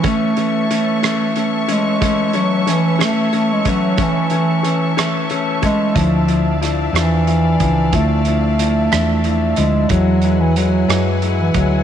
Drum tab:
HH |xxxxxx|xxxxxx|xxxxxx|xxxxxx|
SD |---r--|--rr--|---r--|--rr--|
BD |o-----|o----o|o----o|o----o|

HH |xxxxxx|xxxxxx|
SD |---r--|---r--|
BD |o-----|o----o|